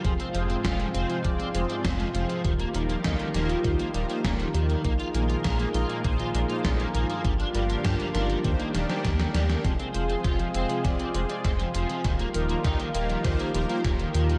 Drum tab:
HH |xxxxxxxxxxxxxxxx|xxxxxxxxxxxxxxxx|xxxxxxxxxxxxxxxx|xxxxxxxxxxxxxxxx|
SD |----o-------o---|----o-o-----o---|----o-------o---|----o-o---oooooo|
BD |o---o---o---o---|o---o---o---o---|o---o---o---o---|o---o---o---o---|

HH |xxxxxxxxxxxxxxxx|xxxxxxxxxxxxxxxx|
SD |o---o---o---o---|o---o---o---o---|
BD |o---o---o---o---|o---o---o---o---|